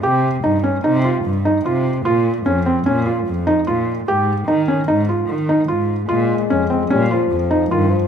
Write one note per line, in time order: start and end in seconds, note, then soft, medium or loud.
0.03 0.36 C3 medium
0.03 0.27 G4 medium
0.44 0.77 G2 medium
0.44 0.56 D#4 medium
0.64 0.76 C#4 medium
0.84 1.16 C3 medium
0.84 0.96 D#4 medium
1.04 1.28 F4 medium
1.25 1.57 G2 medium
1.45 1.57 D#4 medium
1.65 1.98 C3 medium
1.65 1.89 F4 medium
2.05 2.38 A#2 medium
2.05 2.29 F4 medium
2.46 2.79 F2 medium
2.46 2.58 C#4 medium
2.66 2.78 C4 medium
2.86 3.19 A#2 medium
2.86 2.98 C#4 medium
3.06 3.30 F4 medium
3.27 3.59 F2 medium
3.47 3.59 D#4 medium
3.67 4.00 A#2 medium
3.67 3.91 F4 medium
4.08 4.40 G#2 medium
4.08 4.32 G4 medium
4.48 4.80 D#3 medium
4.48 4.60 D#4 medium
4.68 4.80 C#4 medium
4.88 5.21 G#2 medium
4.88 5.00 D#4 medium
5.09 5.33 F4 soft
5.29 5.61 D#3 medium
5.49 5.61 D#4 medium
5.68 6.01 G#2 medium
5.68 5.92 F4 medium
6.09 6.42 A#2 medium
6.09 6.93 G#3 medium
6.09 6.33 F4 medium
6.50 6.83 F2 medium
6.50 6.62 C#4 medium
6.70 6.82 C4 medium
6.90 7.23 A#2 medium
6.90 7.12 G3 medium
6.90 7.02 C#4 medium
7.10 7.73 F3 medium
7.10 7.34 F4 medium
7.32 7.63 F2 medium
7.51 7.62 D#4 medium
7.71 8.04 G2 medium
7.71 7.91 D#3 medium
7.71 7.95 F4 medium
7.90 8.07 F3 medium